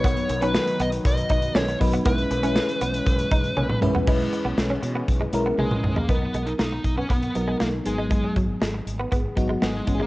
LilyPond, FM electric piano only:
\new Staff \with { instrumentName = "FM electric piano" } { \time 4/4 \key b \major \tempo 4 = 119 <fis b dis' b'>8. <fis b dis' b'>4.~ <fis b dis' b'>16 r4 <fis b dis' b'>8 | <gis cis' e' b'>8. <gis cis' e' b'>4.~ <gis cis' e' b'>16 r4 <gis cis' e' b'>8 | <gis cis' e' b'>4.~ <gis cis' e' b'>16 r8. <gis cis' e' ais'>4. | <fis b dis' ais'>4.~ <fis b dis' ais'>16 r8. <fis b dis' ais'>4 <fis b dis' gis'>8~ |
<fis b dis' gis'>4~ <fis b dis' gis'>16 r4 r16 <fis b dis' fis'>4 <e b cis' fis' gis'>8 | }